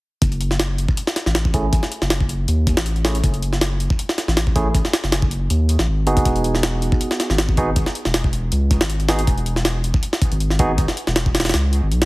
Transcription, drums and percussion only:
0.22 kick, closed hi-hat
0.32 closed hi-hat
0.41 closed hi-hat
0.51 snare
0.60 snare, closed hi-hat
0.78 closed hi-hat
0.89 kick
0.97 closed hi-hat
1.07 snare
1.16 snare, closed hi-hat
1.26 snare
1.35 snare, closed hi-hat
1.45 kick
1.54 kick, closed hi-hat
1.73 kick, closed hi-hat
1.83 snare
1.92 closed hi-hat
2.02 snare
2.10 snare, closed hi-hat
2.21 kick
2.29 closed hi-hat
2.48 closed hi-hat
2.67 kick, closed hi-hat
2.77 snare
2.86 closed hi-hat
2.96 closed hi-hat
3.05 snare
3.15 closed hi-hat
3.24 kick, closed hi-hat
3.34 closed hi-hat
3.42 closed hi-hat
3.53 snare
3.61 snare, closed hi-hat
3.80 closed hi-hat
3.90 kick
3.99 closed hi-hat
4.09 snare
4.18 snare, closed hi-hat
4.28 snare
4.37 snare, closed hi-hat
4.47 kick
4.56 kick, closed hi-hat
4.75 kick, closed hi-hat
4.85 snare
4.93 snare, closed hi-hat
5.04 snare
5.12 snare, closed hi-hat
5.22 kick
5.31 closed hi-hat
5.50 closed hi-hat
5.69 closed hi-hat
5.79 snare
6.07 closed hi-hat
6.17 kick, closed hi-hat
6.25 kick, closed hi-hat
6.36 closed hi-hat
6.44 closed hi-hat
6.55 snare
6.63 snare, closed hi-hat
6.82 closed hi-hat
6.92 kick
7.01 closed hi-hat
7.11 snare
7.20 snare, closed hi-hat
7.30 snare
7.38 snare, closed hi-hat
7.49 kick
7.57 kick, closed hi-hat
7.76 kick, closed hi-hat
7.86 snare
7.95 closed hi-hat
8.05 snare
8.14 snare, closed hi-hat
8.24 kick
8.33 closed hi-hat
8.52 closed hi-hat
8.71 kick, closed hi-hat
8.81 snare
8.90 closed hi-hat
9.00 closed hi-hat
9.09 snare
9.19 closed hi-hat
9.27 kick, closed hi-hat
9.38 closed hi-hat
9.46 closed hi-hat
9.56 snare
9.65 snare, closed hi-hat
9.84 closed hi-hat
9.94 kick
10.03 closed hi-hat
10.13 snare
10.22 kick, closed hi-hat
10.32 closed hi-hat
10.40 closed hi-hat
10.50 snare
10.59 kick, closed hi-hat
10.78 kick, closed hi-hat
10.88 snare
10.97 closed hi-hat
11.07 snare
11.16 snare, closed hi-hat
11.26 kick
11.35 snare, closed hi-hat
11.40 snare, closed hi-hat
11.45 snare, closed hi-hat
11.49 snare, closed hi-hat
11.54 snare, closed hi-hat
11.73 closed hi-hat
11.92 closed hi-hat
12.02 snare, closed hi-hat

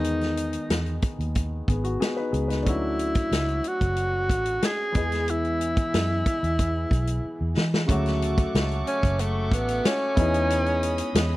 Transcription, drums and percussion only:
0.04 closed hi-hat
0.21 snare, closed hi-hat
0.37 closed hi-hat
0.53 closed hi-hat
0.70 snare, closed hi-hat
0.86 closed hi-hat
1.02 kick, closed hi-hat
1.20 closed hi-hat
1.35 kick, closed hi-hat
1.68 kick, closed hi-hat
1.84 closed hi-hat
2.02 snare, closed hi-hat
2.34 closed hi-hat
2.50 snare, closed hi-hat
2.66 kick, closed hi-hat
2.99 closed hi-hat
3.15 kick, closed hi-hat
3.32 snare, closed hi-hat
3.48 closed hi-hat
3.64 closed hi-hat
3.81 kick, closed hi-hat
3.96 closed hi-hat
4.30 kick, closed hi-hat
4.46 closed hi-hat
4.62 snare, closed hi-hat
4.95 kick, closed hi-hat
5.12 snare, closed hi-hat
5.28 closed hi-hat
5.45 closed hi-hat
5.61 closed hi-hat
5.77 kick, closed hi-hat
5.94 snare, closed hi-hat
6.26 kick, closed hi-hat
6.44 closed hi-hat
6.59 kick, closed hi-hat
6.91 kick, closed hi-hat
7.07 closed hi-hat
7.57 snare
7.74 snare
7.89 kick, closed hi-hat
8.06 snare, closed hi-hat
8.22 closed hi-hat
8.38 kick, closed hi-hat
8.55 snare, closed hi-hat
8.71 closed hi-hat
8.87 closed hi-hat
9.03 kick, closed hi-hat
9.19 closed hi-hat
9.52 kick, closed hi-hat
9.68 closed hi-hat
9.85 snare, closed hi-hat
10.17 kick, closed hi-hat
10.34 closed hi-hat
10.50 closed hi-hat
10.66 closed hi-hat
10.83 closed hi-hat
10.98 closed hi-hat
11.15 snare, closed hi-hat

